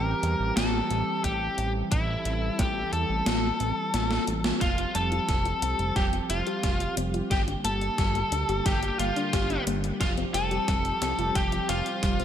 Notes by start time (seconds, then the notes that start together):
Already playing: A1 E3 G3 C4 G4 A#4
0.23 E2, closed hi-hat
0.40 A1
0.57 A1 A4, snare, closed hi-hat
0.91 A1, closed hi-hat
1.24 A1 G4, kick, closed hi-hat
1.58 A1, closed hi-hat
1.92 A1 E4 A4, kick, closed hi-hat
2.25 A1, closed hi-hat
2.59 A1 G4, kick, snare, closed hi-hat
2.93 E2 A4, closed hi-hat
3.10 A1
3.26 A1, snare, closed hi-hat
3.60 A1, closed hi-hat
3.94 A1, snare, closed hi-hat
4.11 snare
4.27 A1, closed hi-hat
4.44 snare
4.61 F1 F3 G3 C4 F4 G4 F5, kick, snare, closed hi-hat
4.78 closed hi-hat
4.95 F1 C4 A4 A5, closed hi-hat
5.12 F4, closed hi-hat
5.29 F1 G4, kick, snare, closed hi-hat
5.45 F4, closed hi-hat
5.62 C2 C4, closed hi-hat
5.79 F1, closed hi-hat
5.96 F1 G3 G4 G5, kick, snare, closed hi-hat
6.13 C4, closed hi-hat
6.30 F1 F4 F5, closed hi-hat
6.47 G4, closed hi-hat
6.63 F1 G3, kick, snare, closed hi-hat
6.80 closed hi-hat
6.97 F1 C4, closed hi-hat
7.14 F4, closed hi-hat
7.31 G1 D3 A#3 G4 G5, kick, snare, closed hi-hat
7.48 D4, closed hi-hat
7.65 G1 A#3 A4 A5, closed hi-hat
7.81 closed hi-hat
7.98 G1 G3, kick, snare, closed hi-hat
8.15 A#3, closed hi-hat
8.32 D2 D4, closed hi-hat
8.49 G1 G4, closed hi-hat
8.66 G1 G3 G4 G5, kick, snare, closed hi-hat
8.83 closed hi-hat
8.99 G1 A#3 F4 F5, closed hi-hat
9.16 D4, closed hi-hat
9.33 G1 G4, kick, snare, closed hi-hat
9.50 D4, closed hi-hat
9.67 G1 A#3, closed hi-hat
9.84 closed hi-hat
10.01 F1 F3 G3 C4 F4 G4 F5, kick, snare, closed hi-hat
10.17 C4, closed hi-hat
10.34 F1 F4 A4 A5, snare, closed hi-hat
10.51 G4, closed hi-hat
10.68 F1 G3, kick, snare, closed hi-hat
10.85 closed hi-hat
11.02 C2 C4, snare, closed hi-hat
11.19 F1 F4, closed hi-hat
11.35 F1 G4 G5, kick, snare, closed hi-hat
11.52 F4, closed hi-hat
11.69 F1 C4 F4 F5, snare, closed hi-hat
11.86 closed hi-hat
12.03 F1 G3, kick, snare, closed hi-hat
12.20 C4, closed hi-hat